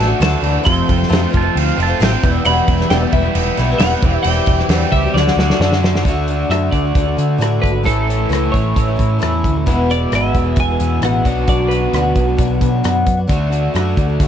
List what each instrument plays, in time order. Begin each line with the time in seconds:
Already playing: picked electric bass A1, overdriven electric guitar A3 D4, clean electric guitar A5
0.00 overdriven electric guitar F#4, snare, crash
0.07 twelve-string acoustic guitar A3 D4 F#4
0.20 picked electric bass D2, twelve-string acoustic guitar D3 E3 A3 D4 F#4, clean electric guitar A5, snare, crash
0.40 picked electric bass D2, twelve-string acoustic guitar E3 A3 D4 F#4, crash
0.63 picked electric bass F1, twelve-string acoustic guitar F2 C3 F3 A3 C4 F4, clean electric guitar C6, kick, crash
0.86 picked electric bass F1, twelve-string acoustic guitar F3 A3 C4 F4, kick
0.90 crash
0.97 twelve-string acoustic guitar F3 A3 C4 F4
1.03 snare
1.08 twelve-string acoustic guitar F2 C3 F3 A3 C4 F4, picked electric bass F2, crash
1.13 snare
1.18 twelve-string acoustic guitar F3 A3 C4 F4
1.30 picked electric bass F1, twelve-string acoustic guitar F3 A3 C4 F4, kick
1.35 pedal steel guitar A5, crash
1.43 twelve-string acoustic guitar F3 A3 C4 F4
1.55 picked electric bass D2, overdriven electric guitar C4, crash
1.60 pedal steel guitar F5
1.76 picked electric bass F1, twelve-string acoustic guitar F3 A3 C4 F4, crash
1.83 pedal steel guitar A5
1.88 twelve-string acoustic guitar F3 A3 C4 F4
2.00 picked electric bass A1, twelve-string acoustic guitar F2 C3 F3 A3 C4 F4, snare, crash
2.04 pedal steel guitar G5
2.11 twelve-string acoustic guitar F3 A3 C4 F4
2.22 picked electric bass E1, overdriven electric guitar E2, twelve-string acoustic guitar E3 G3 B3 E4, kick, crash
2.45 picked electric bass E1, twelve-string acoustic guitar E2 B2 E3 G3 B3 E4, clean electric guitar B5, crash
2.68 picked electric bass E1, twelve-string acoustic guitar E3 G3 B3 E4, kick, crash
2.78 twelve-string acoustic guitar E3 G3 B3 E4, snare
2.90 picked electric bass E1, twelve-string acoustic guitar E2 B2 E3 G3 B3 E4, clean electric guitar G5, snare, crash
3.02 twelve-string acoustic guitar E3 G3 B3 E4
3.12 picked electric bass E1, twelve-string acoustic guitar E3 G3 B3 E4, clean electric guitar E5, kick, crash
3.24 twelve-string acoustic guitar E3 G3 B3 E4
3.35 picked electric bass E1, overdriven electric guitar B3, crash
3.57 picked electric bass B1, twelve-string acoustic guitar E3 G3 B3 E4, snare, crash
3.71 twelve-string acoustic guitar E3 G3 B3 E4
3.79 picked electric bass E1, twelve-string acoustic guitar E2 B2 E3 G3 B3, clean electric guitar F#5, snare, crash
3.84 twelve-string acoustic guitar E4
3.92 twelve-string acoustic guitar E3 G3 B3 E4
4.02 picked electric bass E1, twelve-string acoustic guitar E3 G3 C4, kick, crash
4.06 twelve-string acoustic guitar G4
4.23 picked electric bass E1, twelve-string acoustic guitar E3, clean electric guitar G5, crash
4.27 twelve-string acoustic guitar G3 C4 G4
4.46 picked electric bass E1, twelve-string acoustic guitar E3 G3 C4, kick, crash
4.51 twelve-string acoustic guitar G4
4.59 twelve-string acoustic guitar G3 C4 G4, snare
4.69 picked electric bass E2, twelve-string acoustic guitar E3, clean electric guitar F#5, snare, crash
4.73 twelve-string acoustic guitar G3 C4 G4
4.82 twelve-string acoustic guitar G3 C4 G4
4.92 picked electric bass C#2, twelve-string acoustic guitar E3 G3, clean electric guitar E5, kick, crash
4.96 twelve-string acoustic guitar C4 G4
5.06 twelve-string acoustic guitar G3 C4 G4
5.14 picked electric bass D2, clean electric guitar D5, snare
5.18 twelve-string acoustic guitar D3 A3 D4 F#4
5.27 snare
5.36 picked electric bass D2, twelve-string acoustic guitar D3 A3 D4, snare
5.40 twelve-string acoustic guitar F#4
5.50 twelve-string acoustic guitar D4 F#4, snare
5.54 twelve-string acoustic guitar A3
5.60 picked electric bass F#2, twelve-string acoustic guitar D3 A3 D4, snare
5.64 twelve-string acoustic guitar F#4
5.72 twelve-string acoustic guitar A3 D4 F#4, snare
5.83 twelve-string acoustic guitar D3 A3 D4 F#4, snare
5.95 snare
6.03 picked electric bass D2, overdriven electric guitar D3, kick, closed hi-hat
6.08 twelve-string acoustic guitar D3 A3 D4 F#4
6.28 twelve-string acoustic guitar D3 A3 D4, closed hi-hat
6.33 twelve-string acoustic guitar F#4
6.49 picked electric bass F#2, twelve-string acoustic guitar D3 A3 D4 F#4, clean electric guitar E5, cross-stick, closed hi-hat
6.71 picked electric bass D2, twelve-string acoustic guitar D3 A3 D4 F#4, clean electric guitar D5, kick, closed hi-hat
6.85 twelve-string acoustic guitar A3 D4 F#4
6.95 picked electric bass D2, twelve-string acoustic guitar D3 A3 D4 F#4, kick, closed hi-hat
7.05 twelve-string acoustic guitar A3 D4 F#4
7.17 twelve-string acoustic guitar D3 A3 D4 F#4, picked electric bass D3, closed hi-hat
7.38 picked electric bass A2, twelve-string acoustic guitar D3 A3 D4 F#4, closed hi-hat
7.42 cross-stick
7.62 picked electric bass G#1, clean electric guitar B4, kick, closed hi-hat
7.71 twelve-string acoustic guitar A3 D4 F#4
7.83 picked electric bass A1, twelve-string acoustic guitar A2 E3 A3 C#4 E4, clean electric guitar A4, kick, closed hi-hat
8.07 twelve-string acoustic guitar E3 A3 C#4 E4, closed hi-hat
8.29 picked electric bass C#2, twelve-string acoustic guitar A2 E3 A3 C#4 E4, cross-stick, closed hi-hat
8.52 picked electric bass A1, twelve-string acoustic guitar E3 A3 C#4 E4, clean electric guitar C#5, kick, closed hi-hat
8.64 twelve-string acoustic guitar A3 C#4 E4
8.74 picked electric bass A1, twelve-string acoustic guitar E3 A3 C#4 E4, kick, closed hi-hat
8.88 twelve-string acoustic guitar A3 C#4 E4
8.96 picked electric bass A2, twelve-string acoustic guitar E3 A3 C#4 E4, kick, closed hi-hat
9.19 picked electric bass E2, twelve-string acoustic guitar A2 E3 A3 C#4 E4, cross-stick, closed hi-hat
9.44 picked electric bass D2, kick, closed hi-hat
9.54 twelve-string acoustic guitar A3 C#4 E4
9.66 picked electric bass E1, twelve-string acoustic guitar E2 B2 E3 G#3 B3 E4, kick, closed hi-hat
9.89 twelve-string acoustic guitar E3 G#3 B3 E4, clean electric guitar D5, closed hi-hat
10.12 picked electric bass G#1, twelve-string acoustic guitar E2 B2 E3 G#3 B3 E4, clean electric guitar E5, cross-stick, closed hi-hat
10.35 picked electric bass E1, twelve-string acoustic guitar E3 G#3 B3 E4, kick, closed hi-hat
10.44 twelve-string acoustic guitar E3 G#3 B3 E4
10.56 picked electric bass E1, twelve-string acoustic guitar E3 G#3 B3, clean electric guitar G#5, kick, closed hi-hat
10.61 twelve-string acoustic guitar E4
10.70 twelve-string acoustic guitar E3 G#3 B3 E4
10.80 picked electric bass E2, twelve-string acoustic guitar E3 G#3 B3 E4, closed hi-hat
11.02 picked electric bass A1, twelve-string acoustic guitar E2 B2 E3 G#3 B3 E4, clean electric guitar F#5, cross-stick, closed hi-hat
11.25 picked electric bass B1, twelve-string acoustic guitar B2 F#3 B3 D4 F#4, kick, closed hi-hat
11.48 picked electric bass B1, clean electric guitar D5, kick, closed hi-hat
11.68 twelve-string acoustic guitar F#3 B3 D4, clean electric guitar B4, closed hi-hat
11.73 twelve-string acoustic guitar F#4
11.93 picked electric bass D2, twelve-string acoustic guitar B2 F#3 D4, cross-stick, closed hi-hat
11.97 twelve-string acoustic guitar B3 F#4
12.15 picked electric bass B1, twelve-string acoustic guitar F#3 B3 D4 F#4, kick, closed hi-hat
12.27 twelve-string acoustic guitar B3 D4 F#4
12.37 picked electric bass B1, twelve-string acoustic guitar F#3 B3 D4 F#4, kick, closed hi-hat
12.49 twelve-string acoustic guitar B3 D4 F#4
12.60 picked electric bass B2, twelve-string acoustic guitar F#3 B3 D4 F#4, kick, closed hi-hat
12.84 picked electric bass F#2, twelve-string acoustic guitar B2 F#3 B3 D4 F#4, cross-stick, closed hi-hat
13.06 picked electric bass F#2, kick, closed hi-hat
13.17 twelve-string acoustic guitar B3 D4 F#4
13.27 picked electric bass D2, twelve-string acoustic guitar D3 A3 D4 F#4, kick, closed hi-hat
13.32 overdriven electric guitar D4 F#4
13.50 twelve-string acoustic guitar D3 A3 D4 F#4, closed hi-hat
13.74 picked electric bass F#2, twelve-string acoustic guitar D3 A3 D4 F#4, cross-stick, closed hi-hat
13.96 picked electric bass D2, twelve-string acoustic guitar D3 A3 D4 F#4, kick, closed hi-hat
14.07 twelve-string acoustic guitar A3 D4 F#4
14.20 picked electric bass D2, twelve-string acoustic guitar D3 A3 D4 F#4, kick, closed hi-hat